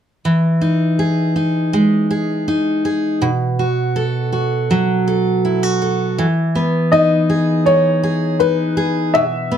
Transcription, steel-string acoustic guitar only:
0.25 3.62 E3 medium
0.61 1.35 D#4 soft
0.99 2.09 G#4 soft
1.36 2.47 D#4 soft
1.73 3.29 G#3 medium
2.11 2.84 G#4 medium
2.48 3.29 D#4 medium
2.85 3.29 G#4 medium
3.22 6.18 B2 medium
3.59 4.31 F#4 soft
3.96 5.06 A4 medium
4.32 5.44 F#4 soft
4.71 6.26 F#3 medium
5.08 5.81 A4 medium
5.45 5.63 E4 medium
5.63 6.26 F#4 soft
5.82 6.26 A4 medium
6.18 9.58 E3 medium
6.55 9.51 B3 soft
6.92 7.65 D#4 soft
7.30 8.02 G#4 medium
7.66 8.39 D#4 medium
8.03 8.76 G#4 medium
8.40 9.22 D#4 medium
8.77 9.22 G#4 medium
9.15 9.58 B2 medium
9.51 9.58 B3 soft

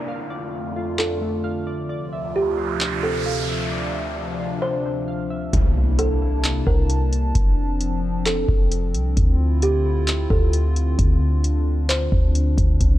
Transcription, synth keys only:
0.08 1.43 F5 medium
0.30 1.66 D5 medium
0.76 1.90 F4 medium
0.99 1.90 D4 medium
1.21 1.90 A3 medium
1.44 1.90 F5 loud
1.67 1.88 D5 medium
1.89 3.26 D5 medium
2.13 3.47 E5 medium
2.58 3.94 F4 medium
2.80 4.17 D4 medium
3.04 4.40 C4 medium
3.26 4.62 F5 medium
3.49 3.94 E5 medium
3.72 5.08 D5 loud
3.95 5.29 E5 medium
4.40 5.53 F4 medium
4.62 5.53 D4 medium
4.85 5.53 C4 medium
5.08 5.53 F5 medium
5.30 5.53 E5 medium

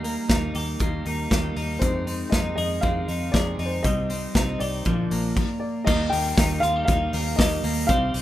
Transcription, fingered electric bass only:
0.00 0.16 D#2 medium
0.29 0.50 D#2 medium
0.55 0.76 D#2 medium
0.80 1.01 D#2 medium
1.05 1.26 D#2 medium
1.31 1.52 D#2 medium
1.56 1.77 D#2 medium
1.82 2.23 F2 medium
2.32 2.53 F2 medium
2.57 2.78 F2 medium
2.83 3.04 F2 loud
3.08 3.29 F2 loud
3.34 3.55 F2 medium
3.59 3.80 F2 medium
3.84 4.26 C2 medium
4.35 4.56 C2 medium
4.61 4.81 C2 medium
4.86 5.07 A#1 medium
5.11 5.32 A#1 medium
5.87 6.08 D#2 loud
6.12 6.33 D#2 medium
6.37 6.58 D#2 loud
6.63 6.83 D#2 medium
6.88 7.09 D#2 loud
7.13 7.34 D#2 loud
7.39 7.59 D#2 medium
7.64 7.84 D#2 loud
7.89 8.10 C2 loud
8.14 8.22 C2 medium

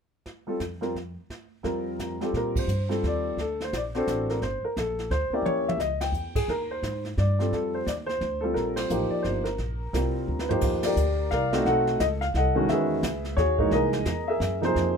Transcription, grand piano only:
0.47 0.59 G3 soft
0.47 0.59 C4 soft
0.47 0.59 F4 soft
0.47 0.60 A4 medium
0.81 0.93 G3 soft
0.81 0.93 C4 soft
0.81 0.94 F4 soft
0.81 0.94 A#4 medium
1.63 2.16 G3 medium
1.63 2.16 C4 soft
1.63 2.16 F4 soft
1.63 2.16 A#4 medium
2.21 2.66 G3 medium
2.21 2.66 C4 medium
2.21 2.66 F4 soft
2.21 2.66 G4 medium
2.21 2.29 A4 medium
2.37 2.55 A#4 medium
2.59 2.89 C5 medium
2.89 3.34 G3 medium
2.89 3.35 C4 medium
2.89 3.34 F4 medium
2.89 3.35 A4 medium
3.07 3.40 D5 medium
3.40 3.60 A4 medium
3.64 3.74 C5 medium
3.76 3.81 D5 medium
3.95 4.39 C4 medium
3.95 4.39 D4 medium
3.95 4.39 F#4 medium
3.95 4.40 A4 medium
3.95 4.28 C5 medium
4.30 4.41 A#4 medium
4.42 4.62 C5 medium
4.64 4.76 A#4 medium
4.78 5.09 A4 medium
5.11 5.32 C5 medium
5.33 5.77 A#3 medium
5.33 5.77 C#4 medium
5.33 5.78 E4 soft
5.33 5.78 G4 medium
5.33 5.44 D5 medium
5.45 5.69 C#5 medium
5.68 5.79 E5 medium
5.80 6.02 D#5 medium
6.01 6.36 G5 medium
6.36 6.49 G#4 medium
6.50 6.71 A#4 medium
6.71 7.03 C5 medium
7.18 7.53 D5 medium
7.39 7.84 G3 medium
7.39 7.84 C4 medium
7.39 7.84 F4 soft
7.39 7.51 A4 medium
7.53 7.76 A4 medium
7.74 7.85 C5 medium
7.86 7.91 D5 medium
8.06 8.43 C5 medium
8.41 8.88 G3 medium
8.41 8.88 C4 medium
8.41 8.88 F4 medium
8.41 8.43 A4 medium
8.41 8.88 A4 medium
8.54 8.75 A#4 medium
8.76 9.09 C5 medium
8.90 9.42 F3 medium
8.90 9.42 A#3 medium
8.90 9.42 D#4 medium
8.90 9.43 G4 medium
9.10 9.24 D5 medium
9.22 9.46 C5 medium
9.44 9.93 A#4 medium
9.93 10.45 G3 medium
9.93 10.45 C4 medium
9.93 10.45 F4 medium
9.93 10.45 A#4 medium
10.40 10.49 B4 medium
10.49 10.94 F3 medium
10.49 10.95 A#3 medium
10.49 10.95 D#4 medium
10.49 10.84 G4 medium
10.49 10.85 C5 medium
10.84 11.29 G4 medium
10.84 11.29 A#4 medium
10.84 11.32 D5 medium
11.31 11.64 A#4 medium
11.31 11.64 D5 medium
11.31 11.66 F5 medium
11.52 11.97 A3 medium
11.52 11.97 C4 medium
11.52 11.97 D#4 medium
11.52 11.98 F#4 medium
11.66 12.19 A4 medium
11.66 11.99 D#5 medium
11.66 11.98 F#5 loud
12.00 12.05 D#5 medium
12.21 12.26 F5 medium
12.36 12.68 A4 medium
12.36 12.68 D#5 medium
12.36 12.71 F#5 medium
12.55 13.00 D#3 medium
12.55 13.00 G#3 medium
12.55 13.00 C#4 medium
12.55 13.01 F#4 medium
12.69 13.35 G#4 medium
12.69 13.35 B4 medium
12.69 13.34 E5 medium
13.37 13.70 F#4 medium
13.37 13.70 G#4 medium
13.37 13.72 C#5 medium
13.59 14.03 E3 medium
13.59 14.03 G#3 medium
13.59 14.04 A#3 medium
13.59 14.04 D#4 medium
13.72 14.25 G#4 medium
13.72 14.25 A#4 medium
13.72 14.30 D#5 medium
14.28 14.65 G#4 medium
14.28 14.73 A#4 medium
14.28 14.60 E5 medium
14.61 14.97 C3 medium
14.61 14.97 F3 medium
14.61 14.97 A#3 medium
14.61 14.65 D#4 medium
14.61 14.95 C5 medium
14.66 14.97 D#4 medium
14.66 14.97 G#4 medium

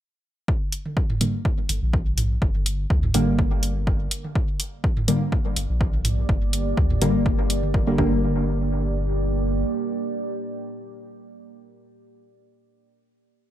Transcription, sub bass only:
1.69 1.79 G1 loud
1.82 2.37 A#1 loud
2.42 2.86 G1 loud
2.90 3.09 D2 loud
3.14 4.07 G1 medium
5.56 5.66 G1 loud
5.69 6.24 A#1 loud
6.29 6.73 G1 loud
6.77 6.96 D2 loud
7.02 7.94 G1 medium
7.98 9.64 G1 loud

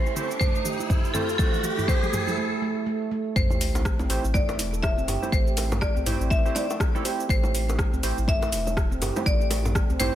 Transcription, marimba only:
0.00 0.38 C5 loud
0.40 1.10 C5 loud
1.14 1.25 A4 medium
1.38 1.84 A4 loud
1.88 2.34 C5 loud
3.36 4.37 C5 loud
4.34 4.85 D5 loud
4.83 5.34 E5 loud
5.32 5.83 C5 loud
5.81 6.32 D5 loud
6.30 6.56 E5 loud
6.55 7.01 D5 medium
7.30 8.31 C5 loud
8.29 9.23 E5 loud
9.26 10.02 D5 loud
10.00 10.15 C5 medium

